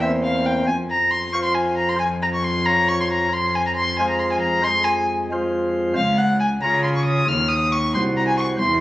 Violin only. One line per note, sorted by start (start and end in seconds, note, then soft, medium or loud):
0.01 0.09 E5 medium
0.23 0.47 F5 medium
0.46 0.66 G5 medium
0.67 0.75 G#5 medium
0.91 1.13 A#5 medium
1.11 1.33 C6 medium
1.33 1.38 C#6 loud
1.44 1.56 C6 medium
1.55 1.77 G#5 medium
1.77 1.91 A#5 medium
1.89 1.99 C6 medium
2.00 2.08 G#5 medium
2.22 2.27 A#5 medium
2.34 2.45 C#6 medium
2.44 2.67 C6 medium
2.66 2.90 A#5 loud
2.88 2.99 C#6 medium
3.01 3.05 C6 loud
3.11 3.34 A#5 medium
3.33 3.56 C6 medium
3.55 3.66 G#5 medium
3.67 3.71 A#5 medium
3.75 3.98 C6 loud
3.99 4.09 G#5 medium
4.10 4.21 A#5 medium
4.19 4.31 C6 medium
4.31 4.36 G#5 medium
4.40 4.65 A#5 medium
4.64 4.86 C6 loud
4.84 5.08 G#5 loud
5.97 6.20 F5 medium
6.18 6.40 F#5 loud
6.40 6.48 G#5 medium
6.61 6.83 A#5 loud
6.84 6.88 C6 medium
6.96 7.05 C#6 medium
7.05 7.30 D#6 medium
7.28 7.50 F6 loud
7.49 7.73 D#6 loud
7.72 7.93 C#6 medium
7.94 8.02 C6 loud
8.17 8.27 A#5 medium
8.28 8.37 G#5 loud
8.38 8.46 C#6 medium
8.59 8.80 C6 medium